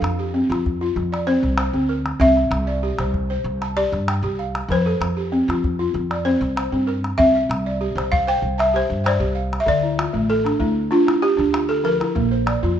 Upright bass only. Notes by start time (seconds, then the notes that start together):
0.02 F2
0.50 F2
0.96 F2
1.43 C2
1.73 D2
2.20 C2
2.51 C2
2.99 C2
3.44 C2
3.92 G2
4.23 C2
4.68 F2
5.00 F2
5.48 F2
5.94 F2
6.41 C2
6.72 G2
7.18 C2
7.49 C2
7.95 C2
8.42 C2
8.90 G2
9.20 C2
9.66 D2
10.14 A1
10.60 D2
11.38 D2
12.15 A#1
12.63 F2